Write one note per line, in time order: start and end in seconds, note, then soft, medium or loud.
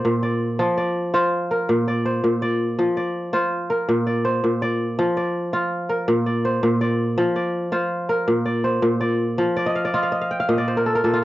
0.00 0.46 F4 medium
0.00 0.59 A#4 medium
0.00 1.05 C5 medium
0.00 0.22 D5 medium
0.05 0.65 A#2 medium
0.23 0.77 D5 medium
0.59 1.74 F3 medium
0.77 1.87 D5 medium
1.14 2.65 F4 medium
1.14 2.05 C5 medium
1.51 2.78 A#4 medium
1.69 2.23 A#2 medium
1.88 2.42 D5 medium
2.06 3.24 C5 medium
2.24 2.84 A#2 medium
2.42 2.97 D5 medium
2.79 3.93 F3 medium
2.97 4.06 D5 medium
3.33 4.84 F4 medium
3.33 4.24 C5 medium
3.70 4.97 A#4 medium
3.89 4.43 A#2 medium
4.07 4.62 D5 medium
4.25 5.44 C5 medium
4.44 5.03 A#2 medium
4.62 5.16 D5 medium
4.99 6.13 F3 medium
5.17 6.26 D5 medium
5.53 7.04 F4 medium
5.89 7.17 A#4 medium
6.08 6.62 A#2 medium
6.26 6.81 D5 medium
6.45 7.64 C5 medium
6.63 7.23 A#2 medium
6.81 7.35 D5 medium
7.18 8.33 F3 medium
7.36 8.45 D5 medium
7.72 9.23 F4 medium
7.72 8.64 C5 medium
8.09 9.36 A#4 medium
8.28 8.81 A#2 medium
8.46 9.00 D5 medium
8.64 9.83 C5 medium
8.82 9.43 A#2 medium
9.01 9.56 D5 medium
9.38 10.54 F3 medium
9.57 9.84 D5 medium
9.66 9.91 D#5 medium
9.75 10.02 F5 medium
9.85 10.18 D5 medium
9.94 11.13 F4 medium
9.94 10.11 D#5 medium
10.03 10.21 F5 medium
10.12 10.48 D#5 medium
10.21 10.39 F5 medium
10.31 11.24 G5 medium
10.40 11.24 F5 medium
10.49 11.03 A#2 medium
10.49 11.24 D#5 medium
10.58 11.24 D5 medium
10.68 11.24 C5 medium
10.77 10.95 A#4 medium
10.86 11.04 A4 medium
10.95 11.24 A#4 medium
11.04 11.24 A#2 medium
11.04 11.22 A4 medium
11.13 11.24 F4 medium